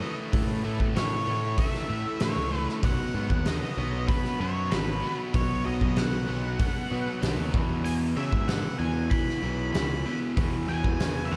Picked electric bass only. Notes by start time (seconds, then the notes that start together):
0.33 A2
0.65 A2
0.80 A2
1.27 A2
1.90 A2
2.21 A2
2.37 C#2
2.83 B1
3.14 G#2
3.31 D#2
3.77 B1
4.40 F#2
4.72 G#1
5.34 B1
5.66 B1
5.81 B1
6.29 B1
6.92 B2
7.22 B1
7.38 D#2
7.54 E2
8.17 C#3
8.33 G#2
8.80 E2
9.42 B1
9.74 C#2
10.38 E2
10.68 E2
10.84 E2
11.32 E2